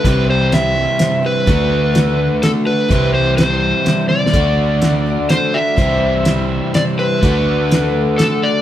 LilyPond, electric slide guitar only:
\new Staff \with { instrumentName = "Electric slide guitar" } { \time 3/4 \key d \mixolydian \tempo 4 = 125 b'8 c''8 e''4. b'8~ | b'2 a'8 b'8~ | b'8 c''8 c''4. d''8~ | d''2 c''8 e''8~ |
e''2 d''8 b'8~ | b'2 a'8 d''8 | }